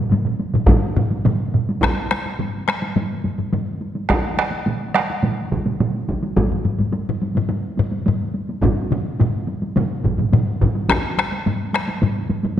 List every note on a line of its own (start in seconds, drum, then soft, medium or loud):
0.10 taiko low-mid medium
0.10 taiko mid medium
0.10 taiko high medium
0.25 taiko low-mid medium
0.25 taiko mid medium
0.39 taiko high medium
0.54 taiko low-mid medium
0.54 taiko mid medium
0.54 taiko high medium
0.67 taiko medium
0.67 taiko low-mid medium
0.67 taiko mid loud
0.67 taiko high medium
0.96 taiko low-mid medium
0.96 taiko mid medium
0.96 taiko high medium
1.11 taiko high medium
1.25 taiko low-mid medium
1.25 taiko mid medium
1.25 taiko high medium
1.54 taiko low-mid medium
1.54 taiko mid medium
1.69 taiko high medium
1.82 taiko rim medium
1.82 taiko medium
1.82 taiko high medium
2.11 taiko rim medium
2.11 taiko high soft
2.26 taiko high soft
2.39 taiko low-mid medium
2.39 taiko high medium
2.68 taiko rim medium
2.68 taiko high soft
2.82 taiko high soft
2.96 taiko low-mid medium
2.96 taiko high medium
3.24 taiko low-mid medium
3.24 taiko high soft
3.39 taiko low-mid medium
3.39 taiko high soft
3.53 taiko low-mid medium
3.53 taiko high medium
3.81 taiko high soft
3.95 taiko high soft
4.09 taiko rim medium
4.09 taiko medium
4.09 taiko high medium
4.37 taiko rim medium
4.37 taiko high soft
4.51 taiko high soft
4.66 taiko mid medium
4.66 taiko high medium
4.95 taiko rim medium
4.95 taiko high medium
5.10 taiko high soft
5.23 taiko mid medium
5.23 taiko high medium
5.52 taiko medium
5.52 taiko mid medium
5.52 taiko high soft
5.66 taiko mid medium
5.66 taiko high medium
5.80 taiko mid medium
5.80 taiko high medium
6.09 taiko medium
6.09 taiko high soft
6.23 taiko high medium
6.36 taiko medium
6.36 taiko low-mid medium
6.36 taiko high medium
6.51 taiko low-mid medium
6.65 taiko low-mid medium
6.65 taiko high medium
6.79 taiko low-mid medium
6.79 taiko high medium
6.93 taiko high medium
7.09 taiko low-mid medium
7.22 taiko high medium
7.35 taiko low-mid medium
7.35 taiko high soft
7.49 taiko high medium
7.78 taiko low-mid medium
7.78 taiko high soft
7.92 taiko high soft
8.06 taiko low-mid medium
8.06 taiko high medium
8.34 taiko high soft
8.49 taiko high soft
8.62 taiko medium
8.62 taiko low-mid medium
8.62 taiko mid medium
8.62 taiko high medium
8.91 taiko low-mid medium
8.91 taiko mid medium
8.91 taiko high medium
9.05 taiko high soft
9.20 taiko low-mid medium
9.20 taiko mid medium
9.20 taiko high medium
9.48 taiko high medium
9.62 taiko high soft
9.76 taiko low-mid medium
9.76 taiko mid medium
9.76 taiko high medium
10.04 taiko medium
10.04 taiko low-mid medium
10.04 taiko mid medium
10.04 taiko high soft
10.19 taiko low-mid medium
10.19 taiko mid medium
10.19 taiko high soft
10.32 taiko low-mid loud
10.32 taiko mid medium
10.32 taiko high medium
10.61 taiko medium
10.61 taiko low-mid medium
10.61 taiko mid medium
10.75 taiko high soft
10.89 taiko rim medium
10.89 taiko medium
10.89 taiko high medium
11.18 taiko rim medium
11.18 taiko high medium
11.32 taiko high soft
11.46 taiko low-mid medium
11.46 taiko high medium
11.74 taiko rim medium
11.74 taiko high medium
11.88 taiko high medium
12.02 taiko low-mid loud
12.02 taiko high medium
12.30 taiko low-mid medium
12.30 taiko high medium
12.43 taiko low-mid medium
12.43 taiko high medium